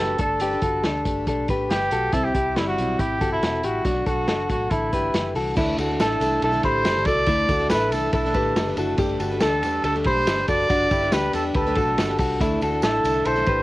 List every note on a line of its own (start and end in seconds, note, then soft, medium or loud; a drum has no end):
0.00 0.16 F#1 medium
0.00 0.19 F#3 medium
0.00 0.18 A3 medium
0.00 0.18 D4 medium
0.00 0.20 F#4 medium
0.00 0.17 G4 medium
0.00 0.18 A4 medium
0.00 0.17 B4 medium
0.19 0.56 G1 medium
0.19 0.40 A3 medium
0.19 0.40 D4 medium
0.19 0.41 D4 soft
0.19 0.41 G4 medium
0.19 0.41 A4 medium
0.19 1.02 A4 medium
0.19 0.41 B4 medium
0.19 kick medium
0.19 closed hi-hat medium
0.40 0.51 G3 medium
0.40 0.52 A3 medium
0.40 0.52 D4 medium
0.40 0.63 D4 medium
0.40 0.63 G4 medium
0.40 0.52 G4 medium
0.40 0.50 B4 medium
0.40 closed hi-hat medium
0.51 1.04 D4 soft
0.51 1.06 G4 soft
0.51 1.05 B4 soft
0.62 0.81 G1 medium
0.62 0.85 F#4 medium
0.62 0.84 A4 medium
0.62 kick medium
0.62 closed hi-hat medium
0.83 1.02 D2 medium
0.83 1.26 D4 medium
0.83 1.25 A4 medium
0.83 snare medium
0.83 closed hi-hat medium
1.05 1.27 G1 medium
1.05 1.47 A3 medium
1.05 1.48 D4 medium
1.05 1.49 G4 medium
1.05 1.49 B4 medium
1.05 kick medium
1.05 closed hi-hat medium
1.27 1.45 B1 medium
1.27 1.50 D4 medium
1.27 1.49 A4 medium
1.27 kick medium
1.27 closed hi-hat medium
1.48 1.67 A1 medium
1.48 1.69 A3 medium
1.48 1.70 D4 medium
1.48 1.71 G4 medium
1.48 1.90 G4 medium
1.48 1.90 B4 medium
1.48 1.71 B4 medium
1.48 kick medium
1.48 closed hi-hat medium
1.70 1.88 G1 medium
1.70 1.91 A3 medium
1.70 1.91 D4 medium
1.70 2.15 G4 loud
1.70 1.92 G4 medium
1.70 1.93 B4 medium
1.70 snare loud
1.70 closed hi-hat medium
1.91 2.10 B1 medium
1.91 2.13 A3 medium
1.91 2.14 D4 medium
1.91 2.13 F#4 medium
1.91 2.14 G4 medium
1.91 2.14 A4 medium
1.91 2.14 B4 medium
1.91 closed hi-hat medium
2.12 2.31 C2 medium
2.12 2.24 C3 medium
2.12 2.24 G3 medium
2.12 2.35 C4 medium
2.12 2.24 C4 medium
2.12 2.34 E4 medium
2.12 2.23 E4 medium
2.12 2.26 A4 loud
2.12 kick medium
2.12 closed hi-hat medium
2.24 2.78 G3 soft
2.24 2.78 C4 soft
2.24 2.78 E4 medium
2.24 2.58 G4 medium
2.35 2.58 C2 loud
2.35 2.56 E4 medium
2.35 2.56 G4 medium
2.35 kick medium
2.35 closed hi-hat medium
2.56 2.74 G1 medium
2.56 2.97 G3 medium
2.56 2.67 E4 medium
2.56 2.97 E4 medium
2.56 snare loud
2.56 closed hi-hat medium
2.68 3.01 F#4 medium
2.77 2.96 B1 medium
2.77 3.19 C3 medium
2.77 3.20 G3 medium
2.77 3.21 C4 medium
2.77 3.22 E4 medium
2.77 closed hi-hat medium
2.99 3.17 A1 medium
2.99 3.21 E4 medium
2.99 3.31 G4 medium
2.99 3.21 G4 medium
2.99 kick medium
2.99 closed hi-hat medium
3.21 3.39 G1 medium
3.21 3.40 C3 medium
3.21 3.42 G3 medium
3.21 3.42 C4 medium
3.21 3.43 E4 medium
3.21 3.62 F#4 medium
3.21 3.61 A4 medium
3.21 kick medium
3.21 closed hi-hat medium
3.32 3.67 E4 medium
3.42 3.61 E1 medium
3.42 3.62 C3 medium
3.42 3.63 G3 medium
3.42 3.64 C4 medium
3.42 3.64 E4 medium
3.42 snare loud
3.42 closed hi-hat medium
3.63 3.82 A1 medium
3.63 3.84 C3 medium
3.63 3.84 G3 medium
3.63 3.85 C4 medium
3.63 3.86 E4 medium
3.63 4.06 F#4 medium
3.63 3.85 G4 medium
3.63 closed hi-hat medium
3.85 4.03 B1 loud
3.85 3.96 B2 medium
3.85 3.96 F#3 medium
3.85 3.95 A3 medium
3.85 4.07 D4 medium
3.85 3.93 D4 medium
3.85 4.07 F#4 medium
3.85 kick medium
3.85 closed hi-hat medium
3.95 4.49 F#3 soft
3.95 4.50 A3 soft
3.95 4.51 D4 soft
4.06 4.25 B1 loud
4.06 4.47 F#4 medium
4.06 4.28 F#4 medium
4.06 4.28 A4 medium
4.06 kick medium
4.06 closed hi-hat medium
4.28 4.46 F#1 medium
4.28 4.69 F#4 medium
4.28 4.69 A4 medium
4.28 snare loud
4.28 closed hi-hat medium
4.49 4.68 A1 medium
4.49 4.71 B2 medium
4.49 4.71 F#3 medium
4.49 4.71 A3 medium
4.49 4.71 D4 medium
4.49 4.72 F#4 medium
4.49 kick medium
4.49 closed hi-hat medium
4.71 4.89 A1 loud
4.71 4.92 A2 medium
4.71 4.91 D3 medium
4.71 4.93 E3 medium
4.71 4.93 A3 medium
4.71 4.93 D4 medium
4.71 5.35 E4 medium
4.71 4.93 E4 medium
4.71 4.93 A4 medium
4.71 kick medium
4.71 closed hi-hat medium
4.92 5.11 G1 medium
4.92 5.12 D3 medium
4.92 5.13 E3 medium
4.92 5.14 A3 medium
4.92 5.15 D4 medium
4.92 5.34 G4 medium
4.92 5.33 B4 medium
4.92 kick medium
4.92 closed hi-hat medium
5.14 5.32 F#1 medium
5.14 5.34 D3 medium
5.14 5.35 E3 medium
5.14 5.35 A3 medium
5.14 5.36 D4 medium
5.14 snare loud
5.14 closed hi-hat medium
5.35 5.53 C2 medium
5.35 5.57 D3 medium
5.35 5.56 E3 medium
5.35 5.57 A3 medium
5.35 5.58 D4 medium
5.35 5.57 F#4 soft
5.35 5.57 A4 medium
5.35 open hi-hat medium
5.56 5.75 D2 loud
5.56 5.89 E3 medium
5.56 8.73 A3 medium
5.56 5.89 A3 medium
5.56 5.79 A3 medium
5.56 8.74 D4 medium
5.56 5.89 D4 medium
5.56 8.74 E4 medium
5.56 5.79 E4 loud
5.56 8.74 A4 medium
5.56 5.87 A4 medium
5.56 kick loud
5.56 crash medium
5.56 tambourine soft
5.77 5.96 D2 loud
5.77 6.01 F#4 medium
5.77 6.00 A4 medium
5.77 ride medium
5.77 tambourine soft
5.89 6.20 A3 soft
5.89 6.21 D4 soft
5.89 6.21 A4 medium
5.99 6.18 A1 medium
5.99 6.41 E4 medium
5.99 6.40 A4 medium
5.99 snare loud
5.99 ride medium
5.99 tambourine medium
6.20 6.39 C2 medium
6.20 6.53 D3 medium
6.20 6.52 E3 medium
6.20 6.52 A3 medium
6.20 6.52 D4 medium
6.20 6.51 A4 medium
6.20 ride medium
6.20 tambourine medium
6.42 6.61 B1 loud
6.42 6.65 E4 medium
6.42 6.63 A4 medium
6.42 6.65 A4 medium
6.42 ride medium
6.52 7.31 D3 medium
6.52 6.96 E3 medium
6.52 6.99 A3 medium
6.52 6.97 D4 medium
6.52 6.96 A4 medium
6.63 6.82 A1 medium
6.63 7.05 G4 medium
6.63 7.08 C5 loud
6.63 7.05 B5 medium
6.63 kick medium
6.63 ride medium
6.85 7.06 F#1 medium
6.85 snare loud
6.85 ride medium
6.85 tambourine medium
6.96 7.28 A3 soft
6.96 7.29 D4 medium
6.96 7.28 A4 medium
7.05 7.24 C2 medium
7.05 7.28 F#4 medium
7.05 7.29 A4 medium
7.05 7.69 D5 loud
7.05 kick medium
7.05 ride medium
7.05 tambourine medium
7.26 7.46 D2 loud
7.26 7.60 E3 medium
7.26 7.50 A3 medium
7.26 7.61 A3 medium
7.26 7.60 D4 medium
7.26 7.49 E4 loud
7.26 kick loud
7.26 ride medium
7.26 tambourine soft
7.31 7.58 A4 medium
7.49 7.72 D2 loud
7.49 7.71 F#4 medium
7.49 7.70 A4 medium
7.49 kick medium
7.49 ride medium
7.49 tambourine soft
7.60 7.93 A3 soft
7.60 7.93 D4 soft
7.60 7.92 A4 medium
7.70 7.92 A1 medium
7.70 8.12 E4 medium
7.70 8.11 A4 medium
7.70 7.93 B4 medium
7.70 snare loud
7.70 ride medium
7.70 tambourine medium
7.92 8.10 C2 medium
7.92 8.24 D3 medium
7.92 8.25 E3 medium
7.92 8.25 A3 medium
7.92 8.25 D4 medium
7.92 8.12 A4 medium
7.92 8.24 A4 medium
7.92 ride medium
7.92 tambourine medium
8.13 8.31 B1 medium
8.13 8.35 E4 medium
8.13 8.73 A4 medium
8.13 8.35 A4 medium
8.13 kick loud
8.13 ride medium
8.13 tambourine soft
8.26 9.63 D3 medium
8.26 8.69 E3 medium
8.26 8.69 A3 medium
8.26 8.68 D4 medium
8.26 8.67 A4 medium
8.34 8.53 A1 medium
8.34 8.76 G4 medium
8.34 8.75 B4 medium
8.34 kick medium
8.34 ride medium
8.34 tambourine soft
8.56 8.74 F#1 loud
8.56 snare loud
8.56 ride medium
8.56 tambourine medium
8.67 8.99 A3 soft
8.67 8.99 D4 medium
8.67 8.99 A4 medium
8.76 8.95 F#1 medium
8.76 8.96 A3 medium
8.76 8.97 D4 medium
8.76 8.99 E4 medium
8.76 8.99 F#4 medium
8.76 8.99 A4 medium
8.76 ride medium
8.76 tambourine medium
8.97 9.17 G1 loud
8.97 12.36 A3 medium
8.97 9.32 A3 medium
8.97 12.37 D4 medium
8.97 9.21 D4 medium
8.97 9.32 D4 medium
8.97 9.20 G4 loud
8.97 12.37 G4 medium
8.97 12.38 A4 medium
8.97 kick loud
8.97 ride medium
8.97 tambourine soft
9.02 9.31 G4 medium
9.02 9.30 B4 medium
9.20 9.38 G1 loud
9.20 9.41 F#4 medium
9.20 9.41 A4 medium
9.20 ride medium
9.20 tambourine soft
9.32 9.63 D4 soft
9.32 9.64 G4 soft
9.32 9.63 B4 medium
9.40 9.63 D2 medium
9.40 9.82 D4 medium
9.40 9.82 A4 medium
9.40 snare loud
9.40 ride medium
9.40 tambourine medium
9.63 9.81 E2 medium
9.63 9.95 G3 medium
9.63 9.95 A3 medium
9.63 9.95 D4 medium
9.63 9.94 G4 medium
9.63 9.97 B4 medium
9.63 ride medium
9.63 tambourine medium
9.84 10.02 D2 loud
9.84 10.07 D4 medium
9.84 9.94 A4 medium
9.84 10.06 A4 medium
9.84 ride medium
9.84 tambourine soft
9.96 10.39 G3 medium
9.96 10.41 A3 medium
9.96 10.40 D4 medium
9.96 10.38 G4 medium
10.04 10.24 B1 medium
10.04 10.47 G4 medium
10.04 10.46 C5 loud
10.04 10.46 B5 medium
10.04 kick medium
10.04 ride medium
10.27 10.45 G1 loud
10.27 snare loud
10.27 ride medium
10.27 tambourine medium
10.38 10.70 D4 soft
10.38 10.70 G4 medium
10.38 10.70 B4 medium
10.48 10.67 F#1 loud
10.48 10.69 F#4 medium
10.48 10.70 A4 medium
10.48 11.15 D5 loud
10.48 kick medium
10.48 ride medium
10.48 tambourine medium
10.70 10.88 G1 loud
10.70 11.02 A3 medium
10.70 11.02 D4 medium
10.70 10.92 D4 medium
10.70 10.91 F#4 loud
10.70 11.03 G4 medium
10.70 11.01 B4 medium
10.70 kick loud
10.70 ride medium
10.70 tambourine soft
10.91 11.09 G1 loud
10.91 11.13 E4 medium
10.91 11.12 G4 medium
10.91 kick medium
10.91 ride medium
10.91 tambourine soft
11.02 11.33 D4 soft
11.02 11.33 G4 medium
11.02 11.34 B4 medium
11.12 11.31 D2 medium
11.12 11.54 D4 medium
11.12 11.53 G4 medium
11.12 11.34 B4 loud
11.12 snare loud
11.12 ride medium
11.12 tambourine medium
11.33 11.52 E2 medium
11.33 11.66 G3 medium
11.33 11.66 A3 medium
11.33 11.66 D4 medium
11.33 11.66 G4 medium
11.33 11.44 A4 medium
11.33 11.65 B4 medium
11.33 ride medium
11.33 tambourine medium
11.54 11.78 D2 loud
11.54 11.77 G4 medium
11.54 12.16 A4 medium
11.54 11.76 B4 medium
11.54 kick loud
11.54 ride medium
11.67 12.10 G3 medium
11.67 12.10 A3 medium
11.67 12.10 D4 medium
11.67 12.08 G4 medium
11.67 12.06 B4 medium
11.75 11.95 B1 medium
11.75 12.18 F#4 medium
11.75 12.17 A4 medium
11.75 kick medium
11.75 ride medium
11.75 tambourine soft
11.97 12.16 G1 loud
11.97 snare loud
11.97 ride medium
11.97 tambourine medium
12.07 12.40 D4 medium
12.07 12.41 G4 medium
12.07 12.40 B4 medium
12.18 12.38 C2 loud
12.18 12.42 F#4 medium
12.18 12.41 A4 medium
12.18 kick medium
12.18 open hi-hat medium
12.18 ride medium
12.18 tambourine medium
12.40 12.59 D2 loud
12.40 12.73 E3 medium
12.40 13.63 A3 medium
12.40 12.73 A3 medium
12.40 12.63 A3 medium
12.40 13.63 D4 medium
12.40 12.72 D4 medium
12.40 12.63 E4 loud
12.40 13.63 E4 medium
12.40 12.70 A4 medium
12.40 13.63 A4 medium
12.40 kick loud
12.40 hi-hat pedal medium
12.40 ride medium
12.40 tambourine soft
12.61 12.80 D2 medium
12.61 12.84 F#4 medium
12.61 12.83 A4 medium
12.61 ride medium
12.61 tambourine soft
12.71 13.04 A3 soft
12.71 13.05 D4 soft
12.71 13.04 A4 medium
12.82 13.01 A1 medium
12.82 13.25 E4 medium
12.82 13.27 A4 medium
12.82 13.24 A4 medium
12.82 snare loud
12.82 ride medium
12.82 tambourine medium
13.04 13.23 C2 medium
13.04 13.37 D3 medium
13.04 13.36 E3 medium
13.04 13.36 A3 medium
13.04 13.36 D4 medium
13.04 13.35 A4 medium
13.04 ride medium
13.04 tambourine medium
13.25 13.44 B1 loud
13.25 13.48 E4 medium
13.25 13.48 A4 medium
13.25 13.63 C5 loud
13.25 ride medium
13.25 tambourine soft
13.36 13.63 D3 medium
13.36 13.63 E3 medium
13.36 13.63 A3 medium
13.36 13.63 D4 medium
13.36 13.63 A4 medium
13.47 13.63 A1 medium
13.47 13.63 G4 medium
13.47 13.63 B4 medium
13.47 kick medium
13.47 ride medium